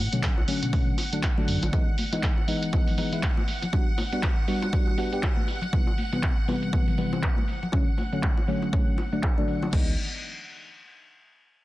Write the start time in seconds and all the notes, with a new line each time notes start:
Already playing: F#5
0.12 B2 D3 F#3 A3 C#4, closed hi-hat
0.23 kick, clap, closed hi-hat
0.37 B1, high bongo
0.48 D3 F#3 A3 C#4, open hi-hat
0.62 B2, closed hi-hat, high bongo
0.73 D3 F#3 A3 C#4, kick, open hi-hat, high conga
0.98 open hi-hat, high bongo
1.12 D3 F#3 A3 D4, closed hi-hat
1.23 kick, clap, closed hi-hat, high bongo
1.37 D3 F#3 A3 D4, high conga
1.48 F#2, open hi-hat
1.62 A1, closed hi-hat, high bongo, low conga
1.73 E3 G#3 B3 D#4 F#5, kick, closed hi-hat, high bongo
1.98 open hi-hat, high conga
2.12 E3 G#3 B3 D#4, closed hi-hat, high bongo
2.23 kick, clap, closed hi-hat
2.38 high bongo
2.48 E3 G#3 B3 D#4, open hi-hat
2.63 closed hi-hat
2.73 E3 G#3 B3 D#4, kick, closed hi-hat, high bongo, high conga
2.87 open hi-hat, low conga
2.98 E3 G#3 B3 D#4, open hi-hat, high bongo, low conga
3.12 E3 G#3 B3 E4, closed hi-hat
3.23 kick, clap, closed hi-hat
3.37 high bongo, high conga
3.48 open hi-hat
3.62 closed hi-hat, high bongo, low conga
3.73 G3 B3 D4 F#4, kick, closed hi-hat, low conga
3.98 open hi-hat, high bongo, high conga
4.12 G3 B3 D4 F#4, closed hi-hat
4.23 kick, clap, closed hi-hat, high bongo
4.48 G3 B3 D4 F#4, open hi-hat
4.62 closed hi-hat, high bongo
4.73 G3 B3 D4 F#4, kick, open hi-hat, high conga
4.87 high bongo
4.98 G3 B3 D4 F#4, open hi-hat
5.12 G3 B3 D4 G4, closed hi-hat
5.23 kick, clap, closed hi-hat, high bongo
5.37 high conga
5.48 open hi-hat, high bongo
5.62 closed hi-hat, low conga
5.73 C3 E3 G3 B3, kick, closed hi-hat
5.87 high bongo
5.98 open hi-hat, high conga
6.12 C3 E3 G3 B3, closed hi-hat, high bongo
6.23 kick, clap, closed hi-hat
6.48 C3 E3 G3 B3, open hi-hat, high bongo
6.63 closed hi-hat
6.73 C3 E3 G3 B3, kick, closed hi-hat, high bongo, high conga
6.88 open hi-hat, low conga
6.98 C3 E3 G3 B3, open hi-hat, low conga
7.12 C3 E3 G3 C4, closed hi-hat, high bongo
7.23 kick, clap
7.37 high bongo, high conga
7.48 open hi-hat
7.63 closed hi-hat, low conga
7.72 D3 F#3 A3 C#4, kick, closed hi-hat, high bongo, low conga
7.98 open hi-hat, high bongo, high conga
8.12 D3 F#3 A3 C#4, closed hi-hat
8.23 kick, clap
8.37 high bongo
8.48 D3 F#3 A3 C#4, open hi-hat
8.62 closed hi-hat, high bongo
8.73 D3 F#3 A3 C#4, kick, open hi-hat, high conga
8.98 open hi-hat, high bongo
9.12 D3 F#3 A3 D4, closed hi-hat
9.23 kick, clap, high bongo
9.37 D3 F#3 A3 D4, high conga
9.48 open hi-hat
9.62 closed hi-hat, high bongo, low conga
9.72 C#2 E3 G#3 B3 D#4, kick, crash